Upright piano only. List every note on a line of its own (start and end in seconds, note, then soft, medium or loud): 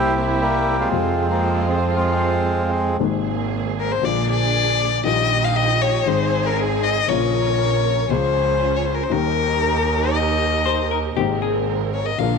0.00 0.87 C2 medium
0.00 0.87 C3 medium
0.00 0.87 G3 soft
0.00 0.87 A#3 soft
0.00 0.88 E4 medium
0.90 2.90 F2 medium
0.90 2.89 C3 medium
0.90 2.90 F3 medium
0.90 2.90 G#3 medium
0.90 2.90 F4 medium
2.98 3.98 G#1 medium
2.98 3.98 G#2 medium
2.98 3.97 C3 soft
2.98 3.97 G#3 medium
2.98 3.98 A#3 medium
2.98 3.99 D#4 medium
4.01 5.00 A#1 medium
4.01 5.00 A#2 medium
4.01 4.99 D3 medium
4.01 5.00 G#3 soft
4.01 5.01 A#3 soft
4.05 5.01 F4 medium
5.04 6.02 A#1 medium
5.04 6.02 A#2 medium
5.04 6.01 D#3 medium
5.04 6.02 G3 medium
5.04 6.03 A#3 medium
5.04 6.03 F4 medium
6.05 7.04 G#1 medium
6.05 7.04 G#2 medium
6.05 7.03 D#3 soft
6.05 7.04 G#3 soft
6.05 7.05 C4 medium
6.10 7.05 G#4 medium
7.08 8.06 A#1 medium
7.08 8.06 A#2 medium
7.08 8.05 C#3 medium
7.08 8.05 F3 medium
7.08 8.06 A#3 medium
7.08 8.07 F4 medium
8.09 9.07 C#2 medium
8.09 8.10 C#3 medium
8.09 9.07 C#3 medium
8.09 9.06 F3 medium
8.09 9.07 G#3 medium
8.13 9.08 F4 medium
9.10 11.07 D#2 medium
9.10 9.11 D#3 medium
9.10 11.07 D#3 medium
9.10 11.07 G3 soft
9.10 11.07 A#3 medium
9.10 11.08 G4 medium
11.16 12.15 G#1 medium
11.16 12.15 G#2 medium
11.16 12.14 C3 soft
11.16 12.14 G#3 soft
11.16 12.15 A#3 soft
11.20 12.16 D#4 medium
12.18 12.38 A#1 medium
12.18 12.38 A#2 medium
12.18 12.38 D3 medium
12.18 12.38 G#3 soft
12.18 12.38 A#3 soft
12.18 12.38 F4 medium